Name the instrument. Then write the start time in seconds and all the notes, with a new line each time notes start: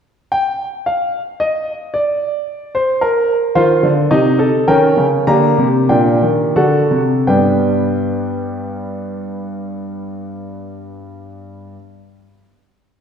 grand piano
0.32 G5
0.86 F5
1.40 D#5
1.94 D5
2.75 C5
3.01 A#4
3.55 D#3 F4 C5
3.83 D3
4.11 C3 D#4 G4 D#5
4.39 A4
4.68 D#3 C#4 A#4 G5
4.97 C#3
5.27 D3 A#3 G4 A#5
5.58 C3
5.89 A#2 D4 G5
6.23 D#3
6.56 D3 F#4 A4 F#5
6.91 C3
7.27 G2 G3 B3 D4 B4 G5